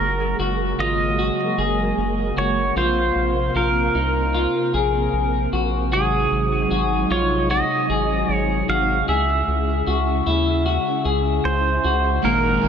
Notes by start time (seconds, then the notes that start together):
Already playing: C#3 F#3 G#3 A#3 F#4 A#4
0.00 F#1
0.39 F#1 F#4
0.78 G#1 F4 D#5
1.19 F#4
1.58 F#1 G#4
1.97 F#1
2.37 F#1 F#4 C#5
2.76 A#1 C3 F4 C5 F5
3.15 A#1
3.55 A#1 F4 A#4
3.95 C2 D#4
4.34 F4
4.74 A#1 G#4
5.13 A#1
5.52 A#1 F#4
5.91 G#1 F#3 G#3 D#4 F#4 G#4
6.31 G#1
6.71 G#1 F#4
7.10 A#1 F4 C#5
7.50 F#4 D#5
7.89 G#1 G#4
8.28 G#1
8.34 C#5
8.68 G#1 F#4 F5
9.08 C#2 C#3 E4 G#4 E5
9.47 C#2
9.87 C#2 F#4
10.26 D#2 E4
10.66 F#4
11.05 C#2 G#4
11.44 C#2 C5
11.84 C#2 F#4
12.23 G#1 A#2 D#3 G#3 A#3 D#4 G#4 A#4
12.62 G#1 D#4 G#4